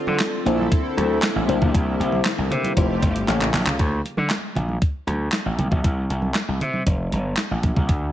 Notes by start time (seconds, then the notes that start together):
Already playing: D3 C4 D4 F4 A4 D5
0.07 D3, high conga
0.20 snare, clap, closed hi-hat
0.45 A#1 A#3 C4 D4 E4 A4 C5, closed hi-hat, muted conga
0.59 high conga
0.72 kick, closed hi-hat, muted conga
0.97 D2, closed hi-hat, high conga
1.22 snare, clap, closed hi-hat, muted conga
1.36 A1
1.48 C2 A#3 D4 E4 G4 C5, closed hi-hat, high conga, low conga
1.62 A#1, kick, low conga
1.74 C2, kick, closed hi-hat
2.00 C2, closed hi-hat
2.12 high conga
2.25 snare, clap, closed hi-hat, muted conga
2.38 C2
2.50 C3, closed hi-hat, muted conga, low conga
2.63 closed hi-hat, high conga
2.76 F1 F3 A3 E4 F4 G4 C5, kick, closed hi-hat
3.02 G1, kick, closed hi-hat, muted conga, high conga
3.16 closed hi-hat
3.28 A1 C#3 A#3 E4 G4 A4 C#5, clap, closed hi-hat, muted conga
3.40 A1, clap
3.53 A#1, clap, open hi-hat, high conga, low conga
3.66 C#2, clap, low conga
3.79 D2, kick, closed hi-hat
4.05 closed hi-hat, muted conga
4.17 D3, high conga
4.30 snare, clap, closed hi-hat
4.55 A#1, closed hi-hat, muted conga, low conga
4.69 high conga
4.82 kick, closed hi-hat
5.07 D2, closed hi-hat, high conga
5.32 snare, clap, closed hi-hat, muted conga
5.46 A1
5.58 C2, closed hi-hat, muted conga, high conga, low conga
5.71 A#1, kick, low conga
5.84 C2, kick, closed hi-hat
6.10 C2, closed hi-hat
6.22 high conga
6.34 snare, clap, closed hi-hat, muted conga
6.48 C2
6.60 C3, closed hi-hat, muted conga, low conga
6.74 high conga
6.87 F1, kick, closed hi-hat, muted conga
7.12 G1, closed hi-hat, muted conga, high conga
7.37 snare, clap, closed hi-hat, muted conga
7.51 A1
7.63 A#1, kick, closed hi-hat, high conga, low conga
7.76 C2, kick, low conga
7.89 D2, kick, closed hi-hat